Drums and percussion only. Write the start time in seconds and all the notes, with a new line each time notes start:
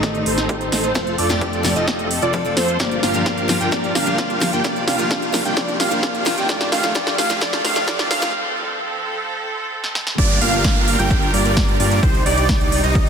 0.03 kick, snare, closed hi-hat
0.15 closed hi-hat
0.26 open hi-hat
0.38 snare, closed hi-hat
0.49 kick, closed hi-hat
0.61 closed hi-hat
0.72 snare, open hi-hat
0.84 closed hi-hat
0.95 kick, snare, closed hi-hat
1.07 closed hi-hat
1.18 open hi-hat
1.30 snare, closed hi-hat
1.41 kick, closed hi-hat
1.53 closed hi-hat
1.65 snare, open hi-hat
1.76 closed hi-hat
1.88 kick, snare, closed hi-hat
1.99 closed hi-hat
2.11 open hi-hat
2.22 closed hi-hat
2.34 kick, closed hi-hat
2.45 closed hi-hat
2.57 snare, open hi-hat
2.68 closed hi-hat
2.80 kick, snare, closed hi-hat
2.91 closed hi-hat
3.03 snare, open hi-hat
3.15 closed hi-hat
3.26 kick, snare, closed hi-hat
3.38 closed hi-hat
3.49 snare, open hi-hat
3.61 closed hi-hat
3.72 kick, snare, closed hi-hat
3.84 closed hi-hat
3.95 snare, open hi-hat
4.07 closed hi-hat
4.18 kick, snare, closed hi-hat
4.30 closed hi-hat
4.41 snare, open hi-hat
4.53 closed hi-hat
4.64 kick, snare, closed hi-hat
4.76 closed hi-hat
4.88 snare, open hi-hat
4.99 closed hi-hat
5.11 kick, snare, closed hi-hat
5.22 closed hi-hat
5.34 snare, open hi-hat
5.45 closed hi-hat
5.57 kick, snare, closed hi-hat
5.68 closed hi-hat
5.80 snare, open hi-hat
5.91 closed hi-hat
6.03 kick, snare, closed hi-hat
6.15 closed hi-hat
6.26 snare, open hi-hat
6.38 closed hi-hat
6.49 kick, snare, closed hi-hat
6.61 snare, closed hi-hat
6.72 snare, open hi-hat
6.84 snare, closed hi-hat
6.95 kick, snare, closed hi-hat
7.07 snare, closed hi-hat
7.18 snare, open hi-hat
7.30 snare, closed hi-hat
7.41 kick, snare, closed hi-hat
7.53 snare, closed hi-hat
7.65 snare, open hi-hat
7.76 snare, closed hi-hat
7.88 kick, snare, closed hi-hat
7.99 snare, closed hi-hat
8.11 snare, open hi-hat
8.22 snare, closed hi-hat
9.84 snare
9.95 snare
10.07 snare
10.18 kick, closed hi-hat, crash
10.30 closed hi-hat
10.41 open hi-hat
10.53 closed hi-hat
10.64 kick, snare, closed hi-hat
10.76 closed hi-hat
10.88 open hi-hat
10.99 closed hi-hat
11.11 kick, closed hi-hat
11.22 closed hi-hat
11.34 open hi-hat
11.45 closed hi-hat
11.57 kick, snare, closed hi-hat
11.68 closed hi-hat
11.80 open hi-hat
11.91 closed hi-hat
12.03 kick, closed hi-hat
12.14 closed hi-hat
12.26 open hi-hat
12.38 closed hi-hat
12.49 kick, snare, closed hi-hat
12.61 closed hi-hat
12.72 open hi-hat
12.84 closed hi-hat
12.95 kick, closed hi-hat